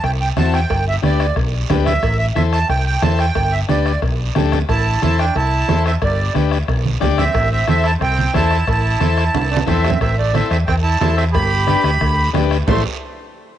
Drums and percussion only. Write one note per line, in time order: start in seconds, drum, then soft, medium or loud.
0.04 bombo low medium
0.04 bombo rim medium
0.04 cowbell medium
0.04 long guiro medium
0.37 bombo rim medium
0.37 high conga medium
0.37 low timbale medium
0.37 short guiro medium
0.54 bombo rim medium
0.54 short guiro medium
0.70 bombo low medium
0.70 bombo rim medium
0.70 cowbell loud
0.70 long guiro medium
1.03 bombo rim medium
1.03 high conga medium
1.03 short guiro medium
1.20 bombo rim medium
1.20 short guiro medium
1.36 bombo low medium
1.36 bombo rim medium
1.36 cowbell medium
1.36 long guiro medium
1.70 bombo low medium
1.70 bombo rim medium
1.70 high conga medium
1.70 low conga medium
1.70 low timbale medium
1.70 short guiro medium
1.86 bombo rim medium
1.86 low conga medium
1.86 short guiro medium
2.03 bombo low medium
2.03 bombo rim medium
2.03 cowbell loud
2.03 long guiro medium
2.36 bombo rim medium
2.36 high conga medium
2.36 short guiro medium
2.53 bombo rim medium
2.53 short guiro medium
2.69 bombo low medium
2.69 bombo rim medium
2.69 cowbell medium
2.69 long guiro medium
3.02 bombo rim medium
3.02 high conga medium
3.02 low timbale medium
3.02 short guiro medium
3.19 bombo rim medium
3.19 short guiro medium
3.35 bombo low medium
3.35 bombo rim medium
3.35 cowbell loud
3.35 long guiro medium
3.69 bombo rim medium
3.69 high conga medium
3.69 short guiro medium
3.86 bombo rim medium
3.86 short guiro medium
4.02 bombo low medium
4.02 bombo rim medium
4.02 cowbell medium
4.02 long guiro medium
4.35 bombo rim medium
4.35 high conga medium
4.35 low conga medium
4.35 short guiro medium
4.52 bombo rim medium
4.52 low conga medium
4.52 short guiro medium
4.69 bombo low medium
4.69 bombo rim medium
4.69 cowbell loud
4.69 long guiro medium
5.02 bombo rim medium
5.02 high conga medium
5.02 short guiro medium
5.19 bombo rim medium
5.19 short guiro medium
5.35 bombo low medium
5.35 bombo rim medium
5.35 cowbell medium
5.35 long guiro medium
5.69 bombo rim medium
5.69 high conga medium
5.69 low timbale medium
5.69 short guiro medium
5.86 bombo rim medium
5.86 short guiro medium
6.02 bombo low medium
6.02 bombo rim medium
6.02 cowbell loud
6.02 long guiro medium
6.35 bombo rim medium
6.35 high conga medium
6.35 short guiro medium
6.51 bombo rim medium
6.51 short guiro medium
6.68 bombo low medium
6.68 bombo rim medium
6.68 cowbell medium
6.68 long guiro medium
6.86 high conga medium
7.01 bombo low medium
7.01 bombo rim medium
7.01 high conga medium
7.01 low conga medium
7.01 low timbale medium
7.01 short guiro medium
7.18 bombo rim medium
7.18 low conga medium
7.18 short guiro medium
7.34 bombo low medium
7.34 bombo rim medium
7.34 cowbell loud
7.34 long guiro medium
7.68 bombo rim medium
7.68 high conga medium
7.68 short guiro medium
7.84 bombo rim medium
7.84 short guiro medium
8.01 bombo low medium
8.01 bombo rim medium
8.01 cowbell medium
8.01 long guiro medium
8.19 high conga medium
8.34 bombo low medium
8.34 bombo rim medium
8.34 high conga medium
8.34 low timbale medium
8.34 short guiro medium
8.51 bombo rim medium
8.51 short guiro medium
8.67 bombo low medium
8.67 bombo rim medium
8.67 cowbell loud
8.67 long guiro medium
9.01 bombo rim medium
9.01 high conga medium
9.01 short guiro medium
9.18 bombo rim medium
9.18 short guiro medium
9.34 bombo low medium
9.34 bombo rim medium
9.34 cowbell medium
9.34 high conga medium
9.34 high timbale medium
9.34 long guiro medium
9.52 high timbale medium
9.57 high conga loud
9.68 bombo low medium
9.68 bombo rim medium
9.68 low conga medium
9.68 short guiro medium
9.84 bombo rim medium
9.84 low timbale medium
9.84 short guiro medium
9.90 low conga medium
10.01 bombo low medium
10.01 bombo rim medium
10.01 cowbell loud
10.01 high conga soft
10.01 long guiro medium
10.35 bombo rim medium
10.35 cowbell medium
10.35 high conga medium
10.35 short guiro medium
10.51 bombo rim medium
10.51 short guiro medium
10.68 bombo low medium
10.68 bombo rim medium
10.68 cowbell medium
10.68 high conga soft
10.68 long guiro medium
11.01 bombo rim medium
11.01 cowbell medium
11.01 high conga medium
11.01 low timbale medium
11.01 short guiro medium
11.18 bombo rim medium
11.18 short guiro medium
11.34 bombo low medium
11.34 bombo rim medium
11.34 cowbell loud
11.34 high conga soft
11.34 long guiro medium
11.68 bombo rim medium
11.68 cowbell medium
11.68 high conga medium
11.68 short guiro medium
11.84 bombo rim medium
11.84 short guiro medium
12.01 bombo low medium
12.01 bombo rim medium
12.01 cowbell medium
12.01 high conga soft
12.01 long guiro medium
12.34 bombo rim medium
12.34 cowbell medium
12.34 high conga medium
12.34 low conga medium
12.34 low timbale medium
12.34 short guiro medium
12.51 bombo rim medium
12.51 short guiro medium
12.68 bombo low loud
12.68 low conga loud
12.68 low timbale loud
12.68 long guiro loud